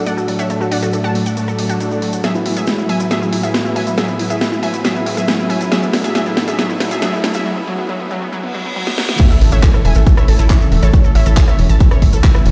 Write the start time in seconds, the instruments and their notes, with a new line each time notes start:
Already playing: riser
0.06 analog synth pad A2 F#3 A3 D4 A4, synth arpeggio sound A3, synth pluck D5 F#5, closed hi-hat, shaker
0.17 analog synth pad A2 F#3 A3 D4 A4, synth arpeggio sound F#4, synth pluck A4, shaker
0.28 synth arpeggio sound F#3, synth pluck A4, open hi-hat
0.39 synth pluck C#5 E5, synth arpeggio sound F#5, closed hi-hat, shaker
0.50 analog synth pad A2 F#3 A3 D4 A4, synth arpeggio sound A3, synth pluck A4, closed hi-hat, shaker
0.61 synth arpeggio sound F#4, synth pluck A4, shaker
0.71 analog synth pad A2 F#3 A3 D4 A4, synth arpeggio sound D4, synth pluck D5 F#5, open hi-hat
0.82 synth arpeggio sound F#4, synth pluck A4, closed hi-hat, shaker
0.93 synth arpeggio sound D4, synth pluck A4, closed hi-hat, shaker
1.04 analog synth pad A2 F#3 A3 D4 A4, synth arpeggio sound F#4, synth pluck F#5 A5, shaker
1.15 synth arpeggio sound A3, open hi-hat
1.26 synth arpeggio sound F#5, closed hi-hat, shaker
1.37 analog synth pad A2 F#3 A3 D4 A4, synth arpeggio sound A3, closed hi-hat, shaker
1.48 synth arpeggio sound A4, shaker
1.59 analog synth pad A2 F#3 A3 D4 A4, synth arpeggio sound D5, open hi-hat
1.70 synth arpeggio sound F#4, closed hi-hat, shaker
1.80 analog synth pad A2 F#3 A3 D4 A4, synth arpeggio sound D4, closed hi-hat, shaker
1.91 analog synth pad A2 F#3 A3 D4 A4, synth arpeggio sound D4, shaker
2.02 synth arpeggio sound A3, open hi-hat
2.13 synth arpeggio sound F#5, closed hi-hat, shaker
2.24 analog synth pad A2 F#3 B3 E4 G#4, synth arpeggio sound F#3, synth pluck G#4 E5, snare, closed hi-hat, shaker
2.35 synth arpeggio sound B3, synth pluck E4, shaker
2.45 analog synth pad A2 F#3 B3 E4 G#4, synth arpeggio sound F#3, synth pluck E4, open hi-hat
2.57 synth arpeggio sound F#3, synth pluck G#4 E5, closed hi-hat, shaker
2.66 synth arpeggio sound G#3, synth pluck E4, snare, closed hi-hat, shaker
2.78 analog synth pad A2 F#3 B3 E4 G#4, synth arpeggio sound E4, synth pluck E4, shaker
2.89 synth arpeggio sound F#3, synth pluck E5 G#5, open hi-hat
3.00 synth arpeggio sound F#3, synth pluck E4, closed hi-hat, shaker
3.11 analog synth pad A2 F#3 B3 E4 G#4, synth arpeggio sound F#3, synth pluck G#4 E5, snare, closed hi-hat, shaker
3.22 synth arpeggio sound B3, synth pluck E4, shaker
3.32 analog synth pad A2 F#3 B3 E4 G#4, synth arpeggio sound F#3, synth pluck E4, open hi-hat
3.43 synth arpeggio sound F#3, synth pluck G#4 E5, closed hi-hat, shaker
3.54 analog synth pad A2 F#3 B3 E4 G#4, synth arpeggio sound G#3, synth pluck E4, snare, closed hi-hat, shaker
3.65 analog synth pad A2 F#3 B3 E4 G#4, synth arpeggio sound E4, synth pluck E4, shaker
3.76 synth arpeggio sound F#3, synth pluck E5 G#5, open hi-hat
3.87 synth arpeggio sound F#3, synth pluck E4, closed hi-hat, shaker
3.97 analog synth pad A2 F#3 B3 E4 G#4, synth arpeggio sound F#3, synth pluck G#4 E5, snare, closed hi-hat, shaker
4.08 synth arpeggio sound B3, synth pluck E4, shaker
4.19 analog synth pad A2 F#3 B3 E4 G#4, synth arpeggio sound F#3, synth pluck E4, open hi-hat
4.30 synth arpeggio sound F#3, synth pluck G#4 E5, closed hi-hat, shaker
4.41 synth arpeggio sound G#3, synth pluck E4, snare, closed hi-hat, shaker
4.52 analog synth pad A2 F#3 B3 E4 G#4, synth pluck E4, synth arpeggio sound E4, shaker
4.63 synth arpeggio sound F#3, synth pluck E5 G#5, open hi-hat
4.73 synth arpeggio sound F#3, synth pluck E4, closed hi-hat, shaker
4.84 analog synth pad A2 F#3 B3 E4 G#4, synth arpeggio sound F#3, synth pluck G#4 E5, snare, closed hi-hat, shaker
4.95 synth arpeggio sound B3, synth pluck E4, shaker
5.06 analog synth pad A2 F#3 B3 E4 G#4, synth arpeggio sound F#3, synth pluck E4, open hi-hat
5.17 synth arpeggio sound F#3, synth pluck G#4 E5, closed hi-hat, shaker
5.28 analog synth pad A2 F#3 B3 E4 G#4, synth arpeggio sound G#3, synth pluck E4, snare, closed hi-hat, shaker
5.39 analog synth pad A2 F#3 B3 E4 G#4, synth pluck E4, synth arpeggio sound E4, shaker
5.50 synth arpeggio sound F#3, synth pluck E5 G#5, open hi-hat
5.61 synth arpeggio sound F#3, synth pluck E4, closed hi-hat, shaker
5.72 analog synth pad A2 F#3 A3 D4 A4, synth arpeggio sound F#3, synth pluck G#4 E5, snare, closed hi-hat, shaker
5.82 synth arpeggio sound B3, synth pluck E4, shaker
5.93 analog synth pad A2 F#3 A3 D4 A4, synth arpeggio sound F#3, synth pluck E4, snare, open hi-hat
6.04 synth arpeggio sound F#3, synth pluck G#4 E5, closed hi-hat, shaker
6.15 synth arpeggio sound F#3, synth pluck G#4 E5, snare, closed hi-hat, shaker
6.26 analog synth pad A2 F#3 A3 D4 A4, synth arpeggio sound B3, synth pluck E4, shaker
6.37 synth arpeggio sound F#3, synth pluck E4, snare, open hi-hat
6.48 synth arpeggio sound F#3, synth pluck G#4 E5, closed hi-hat, shaker
6.58 analog synth pad A2 F#3 A3 D4 A4, synth arpeggio sound F#3, synth pluck G#4 E5, snare, closed hi-hat, shaker
6.69 synth arpeggio sound B3, synth pluck E4, shaker
6.80 analog synth pad A2 F#3 A3 D4 A4, synth arpeggio sound F#3, synth pluck E4, snare, open hi-hat
6.91 synth arpeggio sound F#3, synth pluck G#4 E5, closed hi-hat, shaker
7.02 analog synth pad A2 F#3 A3 D4 A4, synth arpeggio sound F#3, synth pluck G#4 E5, snare, closed hi-hat, shaker
7.13 analog synth pad A2 F#3 A3 D4 A4, synth arpeggio sound B3, synth pluck E4, shaker
7.24 synth arpeggio sound F#3, synth pluck E4, snare, open hi-hat
7.34 synth arpeggio sound F#3, synth pluck G#4 E5, closed hi-hat, shaker
7.46 synth arpeggio sound F#3
7.56 synth arpeggio sound B3
7.67 synth arpeggio sound F#3
7.78 synth arpeggio sound B3
7.89 synth arpeggio sound F#3
8.00 synth arpeggio sound B3
8.11 synth arpeggio sound F#3
8.22 synth arpeggio sound B3
8.32 synth arpeggio sound F#3, reverse cymbal
8.43 synth arpeggio sound B3
8.54 synth arpeggio sound F#3
8.65 synth arpeggio sound B3
8.76 synth arpeggio sound F#3
8.87 synth arpeggio sound B3, snare
8.98 synth arpeggio sound F#3, snare
9.09 synth arpeggio sound B3, snare
9.19 analog synth pad C#3 E3 A3 E4, synth arpeggio sound A3, synth pluck C#5 E5, kick, closed hi-hat, crash, impact, shaker
9.30 synth arpeggio sound E4, synth pluck A4, shaker
9.41 analog synth bass A1, analog synth pad C#3 E3 A3 E4, synth arpeggio sound A3, synth pluck A4, open hi-hat
9.52 analog synth bass A1, synth arpeggio sound A3, synth pluck C#5 E5, closed hi-hat, shaker
9.63 synth arpeggio sound C#4, synth pluck A4, kick, clap, closed hi-hat, shaker
9.74 analog synth pad C#3 E3 A3 E4, synth arpeggio sound A4, synth pluck A4, cross-stick, shaker
9.85 analog synth bass E1, synth arpeggio sound A3, synth pluck E5 G#5, open hi-hat
9.95 analog synth bass A1, synth arpeggio sound A3, synth pluck A4, closed hi-hat, shaker
10.06 analog synth pad C#3 E3 A3 E4, synth arpeggio sound C#4, synth pluck A4, kick, closed hi-hat, shaker
10.17 synth arpeggio sound E4, synth pluck C#5 E5, cross-stick, shaker
10.28 analog synth bass A1, analog synth pad C#3 E3 A3 E4, synth arpeggio sound A4, synth pluck A4, open hi-hat
10.39 analog synth bass A1, synth arpeggio sound E4, synth pluck A4, closed hi-hat, shaker
10.50 analog synth pad C#3 E3 A3 E4, synth arpeggio sound C#4, synth pluck C#5 E5, kick, clap, closed hi-hat, shaker
10.61 analog synth pad C#3 E3 A3 E4, synth arpeggio sound A4, synth pluck A4, shaker
10.72 analog synth bass E1, synth arpeggio sound A3, synth pluck A4, open hi-hat
10.82 analog synth bass A1, synth pluck A4 C#5, synth arpeggio sound A5, closed hi-hat, shaker
10.93 analog synth pad C#3 E3 A3 E4, synth arpeggio sound C#4, synth pluck A4, kick, closed hi-hat, shaker
11.04 synth arpeggio sound A4, synth pluck A4, shaker
11.15 analog synth bass A1, analog synth pad C#3 E3 A3 E4, synth arpeggio sound E4, synth pluck C#5 E5, open hi-hat
11.26 analog synth bass A1, synth arpeggio sound A4, synth pluck A4, closed hi-hat, shaker
11.37 synth arpeggio sound E4, synth pluck A4, kick, clap, closed hi-hat, shaker
11.47 analog synth pad C#3 E3 A3 E4, synth arpeggio sound A4, synth pluck C#5 E5, cross-stick, shaker
11.59 analog synth bass E1, synth arpeggio sound C#4, open hi-hat
11.69 analog synth bass A1, synth arpeggio sound A5, closed hi-hat, shaker
11.80 analog synth pad C#3 E3 A3 E4, synth arpeggio sound C#4, kick, closed hi-hat, shaker
11.91 synth arpeggio sound C#5, cross-stick, shaker
12.02 analog synth bass A1, analog synth pad C#3 E3 A3 E4, synth arpeggio sound E5, kick, open hi-hat
12.13 analog synth bass A1, synth arpeggio sound A4, closed hi-hat, shaker
12.24 analog synth pad C#3 E3 A3 E4, synth arpeggio sound E4, kick, clap, closed hi-hat, shaker
12.34 analog synth pad C#3 E3 A3 E4, synth arpeggio sound E4, cross-stick, shaker
12.46 analog synth bass E1, synth arpeggio sound C#4, open hi-hat